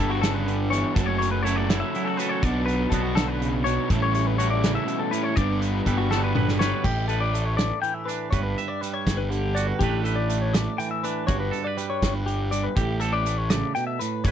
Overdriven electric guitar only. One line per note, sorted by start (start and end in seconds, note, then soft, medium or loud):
0.00 0.22 G2 medium
0.00 0.23 D3 medium
0.00 0.22 G3 medium
0.00 0.22 B3 medium
0.00 0.21 D4 medium
0.22 0.96 G2 medium
0.22 0.95 D3 medium
0.22 0.73 G3 medium
0.22 0.72 B3 medium
0.22 0.71 D4 medium
0.72 0.96 G3 medium
0.72 0.95 B3 medium
0.72 0.95 D4 medium
0.96 1.70 F#2 medium
0.96 1.44 C#3 medium
0.96 1.46 F#3 medium
0.96 1.46 A3 medium
0.96 1.47 C#4 medium
1.45 1.70 C#3 medium
1.45 1.70 F#3 medium
1.45 1.69 A3 medium
1.45 1.68 C#4 medium
1.69 2.43 F#2 medium
1.69 2.42 C#3 medium
1.69 2.20 F#3 medium
1.69 2.18 A3 medium
1.69 2.17 C#4 medium
2.17 2.43 F#3 medium
2.17 2.43 A3 medium
2.17 2.44 C#4 medium
2.42 2.90 B2 medium
2.42 2.92 F#3 medium
2.42 2.93 B3 medium
2.42 2.92 D4 medium
2.91 3.16 B2 medium
2.91 3.17 F#3 medium
2.91 3.16 B3 medium
2.91 3.14 D4 medium
3.15 3.89 B2 medium
3.15 3.66 F#3 medium
3.15 3.65 B3 medium
3.15 3.63 D4 medium
3.64 3.90 F#3 medium
3.64 3.91 B3 medium
3.64 3.88 D4 medium
3.89 4.64 A2 medium
3.89 4.37 E3 medium
3.89 4.39 G3 medium
3.89 4.39 C#4 medium
3.89 4.39 E4 medium
4.38 4.64 E3 medium
4.38 4.64 G3 medium
4.38 4.62 C#4 medium
4.38 4.62 E4 medium
4.63 5.36 A2 medium
4.63 5.37 E3 medium
4.63 5.15 G3 medium
4.63 5.12 C#4 medium
4.63 5.11 E4 medium
5.12 5.38 G3 soft
5.12 5.36 C#4 medium
5.12 5.36 E4 medium
5.37 6.11 G2 medium
5.37 5.85 D3 medium
5.37 5.86 G3 medium
5.37 5.87 B3 medium
5.37 5.87 D4 medium
5.86 6.11 D3 medium
5.86 6.11 G3 medium
5.86 6.10 B3 medium
5.86 6.09 D4 medium
6.10 6.85 G2 medium
6.10 6.84 D3 medium
6.10 6.61 G3 medium
6.10 6.59 B3 medium
6.10 6.58 D4 medium
6.59 6.84 G3 medium
6.59 6.84 B3 medium
6.59 6.83 D4 medium